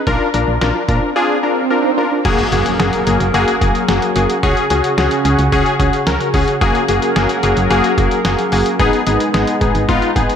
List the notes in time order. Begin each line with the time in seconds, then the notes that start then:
Already playing: swell
0.07 A#1 D4 F4 A#4, kick, closed hi-hat
0.34 A#1 D4 F4 A#4, closed hi-hat
0.48 A#1
0.61 A#1 D4 F4 F#4 A#4, snare, closed hi-hat
0.75 F4
0.89 A#2 D4 F4 A#4, kick, closed hi-hat
1.02 D4
1.16 D4 F4 G#4
1.43 D4 F4 A#4
1.70 D4 F4 A#4
1.84 D#4
1.98 D4 F4 A#4
2.11 D4
2.25 F#1 F#3 A#3 C#4 F#4 G#4 A#4, kick, closed hi-hat, crash, impact
2.39 closed hi-hat
2.52 F#1 A#3 F#4 G#4, closed hi-hat
2.66 closed hi-hat
2.79 F#1 A#3 F#4 G#4, snare, closed hi-hat
2.93 closed hi-hat
3.07 F#1 A#3 F#4 G#4, closed hi-hat
3.20 F#1, closed hi-hat
3.34 F#1 A#3 F#4 G#4, closed hi-hat
3.48 closed hi-hat
3.61 F#1 A#3 F#4 G#4, kick, closed hi-hat
3.75 closed hi-hat
3.89 F#1 A#3 F#4 G#4, snare, closed hi-hat
4.02 closed hi-hat
4.16 F#1 A#3 F#4 G#4, closed hi-hat
4.30 closed hi-hat
4.43 C#2 C#3 C#4 F#4 G#4, kick, closed hi-hat
4.57 closed hi-hat
4.70 C#2 C#4 F#4 G#4, closed hi-hat
4.84 closed hi-hat
4.98 C#2 C#4 F#4 G#4, snare, closed hi-hat
5.11 closed hi-hat
5.25 C#2 C#4 F#4 G#4, closed hi-hat
5.39 C#2, closed hi-hat
5.52 C#2 C#4 F#4 G#4, kick, closed hi-hat
5.66 closed hi-hat
5.80 C#2 C#4 F#4 G#4, kick, closed hi-hat
5.93 closed hi-hat
6.07 C#2 C#4 F#4 A#4, snare, closed hi-hat
6.20 closed hi-hat
6.34 C#2 C#4 F#4 G#4, kick, open hi-hat
6.48 closed hi-hat
6.61 F#1 F#3 A#3 F#4 G#4 A#4, kick, closed hi-hat
6.75 closed hi-hat
6.88 F#1 A#3 F#4 G#4, closed hi-hat
7.02 closed hi-hat
7.16 F#1 A#3 F#4 G#4, snare, closed hi-hat
7.29 closed hi-hat
7.43 F#1 A#3 F#4 G#4, closed hi-hat
7.57 F#1, closed hi-hat
7.70 F#1 A#3 F#4 G#4, closed hi-hat
7.84 closed hi-hat
7.98 F#1 A#3 F#4 G#4, kick, closed hi-hat
8.11 closed hi-hat
8.25 F#1 A#3 F#4 G#4, snare, closed hi-hat
8.39 closed hi-hat
8.52 F#1 A#3 F#4 G#4, open hi-hat
8.66 closed hi-hat
8.79 G#1 G#3 B3 D#4 G#4, kick, closed hi-hat
8.93 closed hi-hat
9.07 G#1 B3 D#4 G#4, closed hi-hat
9.20 closed hi-hat
9.34 G#1 B3 D#4 G#4, snare, closed hi-hat
9.47 closed hi-hat
9.61 G#1 B3 D#4 G#4, kick, closed hi-hat
9.75 G#1, closed hi-hat
9.89 G#1 B3 D#4 F4, kick, closed hi-hat
10.02 closed hi-hat
10.16 G#1 B3 D#4 G#4, kick, closed hi-hat
10.29 closed hi-hat